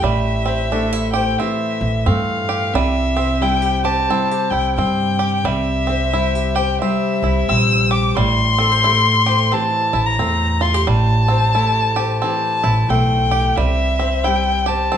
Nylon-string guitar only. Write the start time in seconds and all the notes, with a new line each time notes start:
Already playing: E3
0.04 A2
0.47 C5
0.72 A3 G4
1.15 C5
1.40 E3 G4
2.06 A3
2.74 C3
3.17 C5
3.41 G3 E4
3.62 G4
3.84 C5
4.09 G3 E4
4.31 G4
4.78 G3
5.45 C3
5.89 C5
6.13 G3 E4
6.35 G4
6.57 C5
6.82 G3 G4
7.50 G3
8.17 A2
8.59 A4
8.72 C5
8.86 A3 G4
9.28 C5
9.53 E3 G4
10.19 A3
10.87 A2
11.30 C5
11.56 A3 G4
11.99 C5
12.24 E3 G4
12.90 A3
13.58 C3
14.01 C5
14.27 G3 G4
14.69 C5
14.94 G3 G4